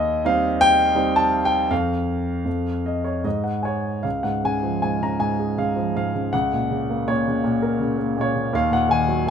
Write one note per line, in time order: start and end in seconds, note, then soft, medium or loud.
0.00 1.67 D#2 medium
0.00 0.26 D#5 medium
0.25 0.94 G3 soft
0.25 0.94 C4 soft
0.25 0.95 D#4 medium
0.25 0.59 F5 medium
0.61 1.17 G5 loud
0.95 1.68 G3 soft
0.95 1.68 C4 soft
0.95 1.68 D#4 medium
1.16 1.47 A5 medium
1.45 1.71 G5 medium
1.70 2.44 F2 medium
1.70 3.21 F5 medium
2.45 3.22 F2 medium
2.86 3.04 D#5 medium
3.04 3.24 C#5 medium
3.24 4.03 G#2 medium
3.24 3.44 D#5 medium
3.44 3.63 F#5 soft
3.63 4.06 C#5 medium
3.63 4.01 G#5 medium
4.03 6.28 C#2 soft
4.03 4.24 F5 medium
4.23 4.82 G#2 soft
4.23 4.44 F#5 medium
4.44 5.00 C#3 soft
4.44 4.80 G#5 medium
4.63 5.75 F3 soft
4.82 5.18 G#2 soft
4.82 5.02 G#5 medium
5.01 5.56 C#3 soft
5.01 5.20 A#5 medium
5.19 5.93 G#2 soft
5.19 5.59 G#5 medium
5.39 6.30 G#4 soft
5.58 6.13 C#3 soft
5.58 5.95 F5 medium
5.76 6.31 F3 soft
5.95 6.31 G#2 soft
5.95 6.34 F5 medium
6.14 6.32 C#3 soft
6.33 8.51 C#2 medium
6.33 7.09 F#5 medium
6.53 7.06 A#2 soft
6.71 7.25 C#3 soft
6.90 7.96 A#3 soft
7.08 7.43 A#2 soft
7.08 8.19 C#5 medium
7.27 7.79 C#3 soft
7.44 8.15 A#2 medium
7.62 8.51 A#4 soft
7.80 8.34 C#3 soft
7.98 8.52 A#3 soft
8.17 8.52 A#2 medium
8.21 8.57 C#5 medium
8.35 8.53 C#3 soft
8.53 9.30 D#2 medium
8.53 8.73 F5 medium
8.70 9.25 A#2 medium
8.70 8.89 F#5 medium
8.89 9.30 D#3 medium
8.89 9.24 G#5 medium
9.08 9.30 F#3 medium
9.26 9.30 A#2 medium